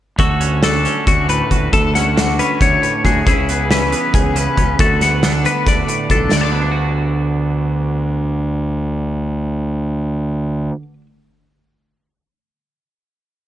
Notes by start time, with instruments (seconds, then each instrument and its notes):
0.19 fingered electric bass D2, clean electric guitar D2 F#4 A4, kick, closed hi-hat
0.40 clean electric guitar C#4, closed hi-hat
0.63 clean electric guitar D3 F#4 A4, snare, closed hi-hat
0.85 clean electric guitar C#4, closed hi-hat
1.07 fingered electric bass D2, clean electric guitar F#4, kick, closed hi-hat
1.29 clean electric guitar A2 B4, closed hi-hat
1.51 fingered electric bass D2, clean electric guitar F#4, kick, closed hi-hat
1.72 fingered electric bass D2, clean electric guitar D2 A4, kick, closed hi-hat
1.95 clean electric guitar C#4 F#5, snare, closed hi-hat
2.17 clean electric guitar D3 F#4, snare, closed hi-hat
2.39 clean electric guitar C#4 B4, closed hi-hat
2.61 fingered electric bass D2, clean electric guitar C#5, kick, closed hi-hat
2.82 clean electric guitar A2, closed hi-hat
3.04 fingered electric bass D2, clean electric guitar F#4 G#4, kick, snare, closed hi-hat
3.26 fingered electric bass C#2, clean electric guitar C#3 E4 G#4, kick, closed hi-hat
3.49 clean electric guitar B3, closed hi-hat
3.71 clean electric guitar E3 C#4 B4, snare, closed hi-hat
3.92 clean electric guitar B3, closed hi-hat
4.14 fingered electric bass C#2, clean electric guitar G#4, kick, closed hi-hat
4.36 clean electric guitar C#3 B4, closed hi-hat
4.57 fingered electric bass C#2, clean electric guitar C#4, kick, closed hi-hat
4.79 fingered electric bass D2, clean electric guitar D2 F#4 A4, kick, closed hi-hat
5.01 clean electric guitar B3 F#5, snare, closed hi-hat
5.23 clean electric guitar D3 B3, snare, closed hi-hat
5.33 clean electric guitar D4
5.45 clean electric guitar B3 B4, closed hi-hat
5.66 fingered electric bass D2, clean electric guitar D5, kick, snare, closed hi-hat
5.87 clean electric guitar A2, closed hi-hat
6.10 fingered electric bass B1, clean electric guitar D4 A4, kick, closed hi-hat
6.32 clean electric guitar D2 D5, fingered electric bass D2, snare, china
6.37 clean electric guitar F#5
6.41 clean electric guitar D3 A5 D6
6.52 clean electric guitar B3
6.62 clean electric guitar D4
6.72 clean electric guitar F#4